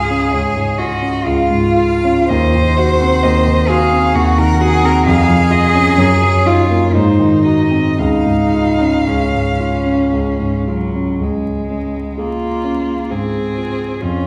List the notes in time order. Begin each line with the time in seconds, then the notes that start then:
Already playing: C#2 G#2 F4 G#4 F5
0.10 C#4
0.33 C#2 C#5
0.57 G#2
0.78 F4 F#4 D#5
1.02 C#4
1.24 C#2 F4 F5
1.50 G#2
1.76 F4 F5
2.04 C#4
2.28 D#2 C5 D#5
2.55 D#3
2.77 F#4 F#5
3.02 C4
3.23 D#2 D#5
3.47 D#3
3.68 F#4 G#4 F5
3.92 C4
4.14 D#2 F#4 F#5
4.38 D#3 A#4
4.61 F#4 G#4
4.83 C4 A#4
5.06 F2 G#4 F5
5.29 F3
5.50 F4 D#5
5.75 C#4
5.98 F#2 C#5
6.22 F#3
6.46 D#4 F4
6.71 A#3
6.93 G#2 D#4 C5
7.19 D#3
7.45 F#4 D#5
7.71 C4
7.97 C#2 D#4 F5
8.26 G#2
8.54 F4
8.81 C#4
9.06 C#2 C#4
9.33 G#2
9.60 F4
9.85 C#4
10.12 C#2
10.39 G#2
10.68 F#3 F4
10.96 C#4
11.20 C#2 G#3
11.70 C#4
12.17 A#3 F4 G#4
12.64 C#4
13.10 G#2 C4 G#4
13.57 F4
14.01 F2 C#4 F4